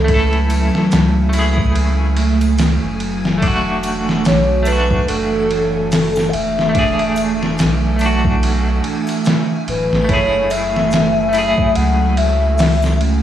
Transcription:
Already playing: C#2 F#3 A3 C#4 E4 A4 G#5
0.04 A3, ride
0.08 E4, kick
0.14 A4
0.33 ride
0.50 ride, triangle
0.75 snare
0.91 C#2, snare, ride, shaker
1.29 A3, triangle
1.33 E4, ride
1.39 G#4
1.58 kick
1.75 ride
2.17 ride
2.41 ride, triangle
2.58 snare, ride, shaker
2.83 F#1
3.00 ride
3.25 snare
3.38 E3 A3 D4, kick
3.42 E1 D4 F#4, ride
3.47 F#4
3.83 ride, triangle
4.09 snare
4.25 B1 C#5, snare, ride, shaker
4.63 A3, ride, triangle
4.67 D4 B4
4.72 F#4
4.91 kick
5.08 F#1 A4, ride
5.51 ride
5.92 snare, open hi-hat, shaker
6.16 snare, triangle
6.29 E5 F#5
6.33 E1, ride
6.59 snare
6.69 A3
6.74 D4 E4, kick, ride
6.79 G#4
6.99 ride
7.16 ride, triangle
7.43 snare
7.58 B1, snare, ride, shaker
7.96 A3, triangle
8.01 D4, ride
8.06 F#4
8.24 kick
8.43 ride
8.84 ride
9.07 ride, triangle
9.25 snare, ride, shaker
9.67 D1 B4, ride
9.92 A1, snare
10.04 A3
10.09 F#1 F#3 C#4 E4 C#5, kick, ride
10.14 G#4
10.50 E5, ride, triangle
10.76 snare
10.91 snare, ride, shaker
11.29 A3
11.33 E4, ride, triangle
11.38 G#4
11.58 kick
11.75 C#2 F#5, ride
12.17 E5, ride
12.58 snare, open hi-hat, shaker
12.82 snare, triangle
13.01 ride

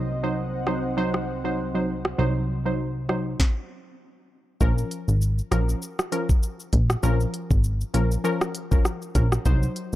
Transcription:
Already playing: C2 F#3 C4 D#4 C5 D#5 F#5
0.23 F#3 D#4 C5
0.67 F#3 D#4 C5, cross-stick
0.97 F#3 D#4 C5
1.14 cross-stick
1.44 F#3 D#4 C5
1.75 F#3 D#4 C5
2.05 cross-stick
2.18 C2 F#3 D#4 C5
2.65 F#3 D#4 C5
3.09 F#3 D#4 C5, cross-stick
3.40 kick, snare
4.61 A#1 F3 C#4 A#4, kick, shaker
4.78 shaker
4.91 closed hi-hat, shaker
5.08 G#1, shaker
5.21 shaker
5.39 shaker
5.51 A#1 F3 C#4 A#4, cross-stick, closed hi-hat, shaker
5.69 shaker
5.82 shaker
5.99 cross-stick, shaker
6.12 F3 C#4 A#4, closed hi-hat, shaker
6.29 kick, shaker
6.43 shaker
6.60 shaker
6.73 A#1, kick, closed hi-hat, shaker
6.90 cross-stick, shaker
7.03 A#1 F3 C#4 A#4, shaker
7.20 shaker
7.34 closed hi-hat, shaker
7.51 G#1, kick, shaker
7.64 shaker
7.81 shaker
7.94 A#1 F3 C#4 A#4, closed hi-hat, shaker
8.11 shaker
8.24 F3 C#4 A#4, shaker
8.41 cross-stick, shaker
8.55 closed hi-hat, shaker
8.71 F3 C#4 A#4, kick, shaker
8.85 cross-stick, shaker
9.02 shaker
9.15 A#1 F3 C#4 A#4, kick, closed hi-hat, shaker
9.32 cross-stick, shaker
9.45 C2 F#3 D#4 C5, kick, shaker
9.63 shaker
9.76 closed hi-hat, shaker

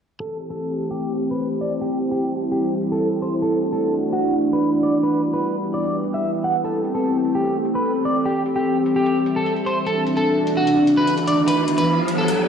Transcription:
0.20 E3 A3 C4 G4 A4, closed hi-hat
0.40 closed hi-hat
0.50 A4, closed hi-hat
0.60 C5
0.80 A5, closed hi-hat
0.91 G4
1.01 closed hi-hat
1.21 closed hi-hat
1.31 B4
1.41 closed hi-hat
1.51 closed hi-hat
1.61 D5, closed hi-hat
1.81 G3 E4 G4, closed hi-hat
2.01 closed hi-hat
2.11 G4, closed hi-hat
2.40 G5, closed hi-hat
2.52 G4
2.62 closed hi-hat
2.82 closed hi-hat
2.92 A4
3.02 closed hi-hat
3.12 closed hi-hat
3.22 C5, closed hi-hat
3.42 A3 D4 F#4 A4, closed hi-hat
3.62 F#5, closed hi-hat
3.73 A4, closed hi-hat
4.03 closed hi-hat
4.07 D5
4.13 F#4
4.23 closed hi-hat
4.43 closed hi-hat
4.53 B4
4.63 closed hi-hat
4.73 closed hi-hat
4.83 D5, closed hi-hat
5.03 G3 B3 G4 B4, closed hi-hat
5.24 closed hi-hat
5.34 B4, closed hi-hat
5.46 G5
5.64 B4, closed hi-hat
5.74 D5
5.84 closed hi-hat
6.04 closed hi-hat
6.14 E5
6.24 closed hi-hat
6.34 closed hi-hat
6.44 F#5, closed hi-hat
6.64 A3 C4 A4, closed hi-hat
6.85 A4, closed hi-hat
6.95 A4, closed hi-hat
7.25 closed hi-hat
7.35 G4
7.45 closed hi-hat
7.65 closed hi-hat
7.75 B4
7.85 closed hi-hat
7.95 closed hi-hat
8.05 D5, closed hi-hat
8.25 G3 C4 G4, closed hi-hat
8.46 closed hi-hat
8.51 G4
8.56 G4, closed hi-hat
8.86 closed hi-hat
8.96 G4 E5
9.06 closed hi-hat
9.26 closed hi-hat
9.36 A4
9.46 closed hi-hat
9.56 closed hi-hat
9.66 C5, closed hi-hat
9.87 E3 A3 D4 F#4 A4, closed hi-hat, riser
10.07 closed hi-hat
10.17 A4, closed hi-hat
10.43 F#4
10.47 closed hi-hat
10.57 F#4
10.67 closed hi-hat
10.87 closed hi-hat
10.97 B4
11.07 closed hi-hat
11.18 closed hi-hat
11.28 D5, closed hi-hat
11.48 G3 B3 G4 B4, closed hi-hat
11.68 closed hi-hat
11.78 B4, closed hi-hat
11.84 G4
12.08 closed hi-hat
12.18 A4
12.28 closed hi-hat

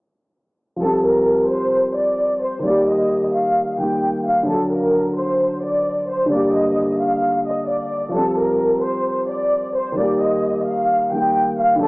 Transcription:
0.76 F3 G3
0.82 C4 A4
0.87 G4
1.05 A#4
1.51 C5
1.97 D5
2.43 C5
2.59 D#3 G3
2.66 A#3 D5
2.70 G4
2.89 D#5
3.34 F5
3.78 D#3 G3 A#3 G5
3.83 G4
4.26 F5
4.43 D3 F#3
4.49 A4
4.54 F#4
4.72 A#4
5.17 C5
5.63 D5
6.09 C5
6.26 D3 G3
6.32 A#3 D5
6.37 G4
6.55 D#5
7.00 F5
7.46 D#5
7.69 D5
8.09 F3 G3
8.15 C4 A4
8.20 G4
8.38 A#4
8.84 C5
9.29 D5
9.75 C5
9.92 D#3 G3
9.98 A#3 D5
10.03 G4
10.21 D#5
10.67 F5
11.10 D#3 G3 A#3 G5
11.16 G4
11.59 F5
11.76 D3 F#3
11.81 A4

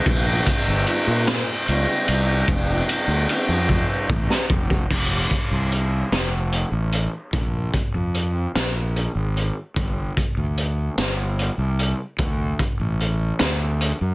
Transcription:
0.06 A#1, kick, ride
0.46 kick, ride
0.68 G1
0.87 ride
1.07 A#2
1.27 snare, ride
1.68 C#2, ride
2.08 C2, ride
2.48 F1, kick, ride
2.89 ride
3.08 D2
3.29 ride
3.49 F2
3.69 kick
4.09 A1, kick
4.30 snare
4.50 F1, kick
4.70 kick
4.91 F1, kick, crash
5.31 kick, closed hi-hat
5.51 C2
5.72 closed hi-hat
6.12 F1, snare, closed hi-hat
6.52 closed hi-hat
6.72 A1
6.92 closed hi-hat
7.33 A#1, kick, closed hi-hat
7.73 kick, closed hi-hat
7.95 F2
8.14 closed hi-hat
8.55 A#1, snare, closed hi-hat
8.96 closed hi-hat
9.15 G#1
9.37 closed hi-hat
9.76 G1, kick, closed hi-hat
10.17 kick, closed hi-hat
10.37 D2
10.58 closed hi-hat
10.98 G1, snare, closed hi-hat
11.39 closed hi-hat
11.58 C2
11.79 closed hi-hat
12.18 D2, kick, closed hi-hat
12.59 kick, closed hi-hat
12.80 A1
13.00 closed hi-hat
13.39 D2, snare, closed hi-hat
13.81 closed hi-hat
14.01 F#2

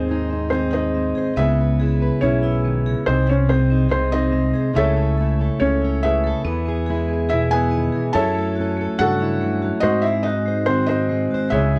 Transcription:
Already playing: D#2 G#2 D#3 C4 D#4 G#4 C5
0.09 G#3 D#4 G#4
0.30 C4 D#4
0.50 D#3 C4 D#4 G#4 C5
0.73 C4 D#4 C5 D#5
0.94 G#3 C4
1.15 G#4 C5
1.36 C#2 C#3 B3 E4 G#4 B4 E5
1.58 B3 B4
1.80 G#3 E4 G#4
2.00 B3 B4
2.21 B1 G#2 C#4 E4 G#4 C#5
2.43 B3 E4
2.65 D#3 B3
2.86 C#3 G#4
3.06 C2 C3 C4 D#4 G#4 C5
3.28 C4 C#4 C5 C#5
3.49 G#3 C4 D#4 G#4 C5
3.70 C4 D#4
3.90 C3 C4 D#4 G#4 C5
4.11 C4 D#4 C5 D#5
4.32 G#3 C4
4.54 G#4 C5
4.74 C#2 C#3 A3 C#4 E4 A4 C#5 E5
4.78 A4
4.97 C#4 A4
5.17 A3 E4 A4
5.39 C#4 A4
5.60 C#2 C#3 C#4 E4 A4 C#5
5.82 C#4 E4
6.03 A3 C#4 E4 G#4 B4 E5
6.24 A4
6.44 E2 E3 B3
6.66 B3 G#4
6.86 G#3 E4 G#4
7.08 B3
7.13 G#4
7.29 B2 E4 G#4 E5
7.33 E4
7.50 E4 G#4 B4 G#5
7.55 B3
7.71 D#3 B3
7.92 E3 G#4
8.13 F#2 E4 A4 C#5 E5 A5
8.17 F#3 C#4 E4 A4
8.35 A3 A4
8.55 F#4
8.60 C#4 A4
8.77 A3 A4
8.98 G2 C#3 F#4 A4 F#5
9.20 C#4 E4
9.41 E3 A3
9.62 F#3 F#4
9.80 G#2 D#4 F#4 C5 D#5
9.86 G#2 C4
10.02 G#3 E4 E5
10.06 C5
10.23 D#4 F#4 D#5
10.27 G#3 F#4
10.46 G#3 C5
10.66 D#3 C4 F#4 C5
10.86 C4 D#4 C5 D#5
10.91 C4
11.09 G#3
11.31 F#4 C5
11.50 C#2 E4 G#4 C#5 E5
11.55 C#3 C#4
11.73 E4 G#4

